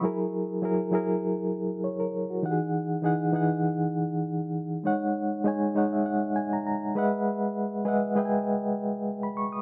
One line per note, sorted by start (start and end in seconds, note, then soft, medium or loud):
0.00 0.53 F#3 medium
0.00 0.54 E4 medium
0.00 0.54 G#4 medium
0.00 0.18 B5 medium
0.05 0.55 A#4 loud
0.62 0.88 F#3 medium
0.62 0.89 E4 medium
0.62 0.89 G#4 medium
0.62 0.90 A#4 loud
0.91 1.93 F#3 medium
0.91 1.94 E4 medium
0.91 1.54 G#4 medium
0.91 1.54 A#4 medium
1.84 1.99 C#5 medium
2.00 2.29 A#4 medium
2.30 2.59 F#4 medium
2.43 2.94 E3 medium
2.43 2.95 D#4 medium
2.43 2.51 G4 medium
2.43 2.96 F#5 loud
2.51 2.98 G#4 medium
3.02 3.29 E3 medium
3.02 3.29 D#4 medium
3.02 3.30 G#4 medium
3.02 3.30 F#5 loud
3.33 4.34 E3 medium
3.33 4.34 D#4 medium
3.33 4.35 G#4 medium
3.33 4.36 F#5 loud
4.84 5.35 G#3 medium
4.84 5.36 D#4 medium
4.84 5.36 C#5 medium
4.84 5.37 F#5 loud
5.44 5.70 G#3 medium
5.44 5.71 D#4 medium
5.44 5.71 C#5 medium
5.44 5.72 G#5 medium
5.75 6.76 G#3 medium
5.75 6.76 D#4 medium
5.75 6.77 C#5 medium
5.75 5.91 D#5 medium
5.75 6.05 F#5 medium
5.93 6.05 E5 medium
6.06 6.34 F#5 medium
6.36 6.51 G#5 medium
6.53 6.66 A#5 medium
6.67 6.94 A#5 medium
6.95 7.72 G#3 loud
6.95 7.72 G#4 medium
6.95 7.72 B4 medium
6.95 7.73 D#5 medium
6.95 7.73 E5 medium
6.95 7.73 F#5 loud
6.95 7.25 B5 medium
7.85 8.11 G#3 medium
7.85 8.11 G#4 medium
7.85 8.12 B4 medium
7.85 8.12 D#5 medium
7.85 8.12 E5 medium
7.85 8.13 F#5 loud
8.15 9.17 G#3 medium
8.15 9.17 G#4 medium
8.15 9.17 B4 medium
8.15 9.18 D#5 medium
8.15 9.18 E5 medium
8.15 8.25 G5 medium
8.25 9.22 G#5 loud
9.23 9.37 B5 medium
9.37 9.53 C#6 medium
9.52 9.62 D#6 medium